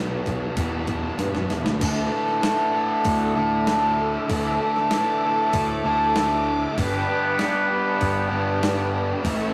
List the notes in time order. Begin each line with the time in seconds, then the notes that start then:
Already playing: B1 E2 B2 E3 G3 B3 E4 G4
0.26 kick, open hi-hat
0.55 E2 B2 E3 G3 B3 E4, kick, open hi-hat
0.59 E4 G4
0.87 kick, open hi-hat
1.19 G2 B3, snare, open hi-hat
1.35 F#2, snare
1.50 E2 E4, snare, open hi-hat
1.64 D2, snare
1.80 D2 D3 E3 A3 D4 E4 A4 E5 D6, kick, open hi-hat, crash
2.09 A3 E4 A4
2.28 snare
2.41 D3 E3 A3 E4 A4, snare, open hi-hat
2.72 A3 E4 A4
3.05 D2 A4, kick, open hi-hat
3.35 D2 A3 E4 A4
3.67 D3 A3 E4 A4, snare, open hi-hat
3.99 A3
4.30 D2 D3 E3 A3 E4 A4, kick, open hi-hat
4.60 A3 E4 A4
4.76 snare
4.91 D3 E3 A3 E4 A4, snare, open hi-hat
5.22 A3 E4 A4
5.53 D2 A4, kick, open hi-hat
5.84 D2 E4 A4
5.88 A3
6.14 D3 A3 E4 A4, snare, open hi-hat
6.49 A3
6.76 G1 G2 D3 G3 B3 D4 G4 B4 G5, kick, open hi-hat
6.80 B4
7.09 G3 B3 D4 G4
7.37 G3 B3 D4 G4, snare, open hi-hat
7.68 G3 B3 D4 G4
8.01 G1 G4, kick, open hi-hat
8.29 G1 G3 B3 D4 G4
8.60 G3 B3 D4 G4, snare, open hi-hat
8.95 B3
9.23 A1 A2 E3 A3 C#4 E4 A4 E5 C#6, kick, open hi-hat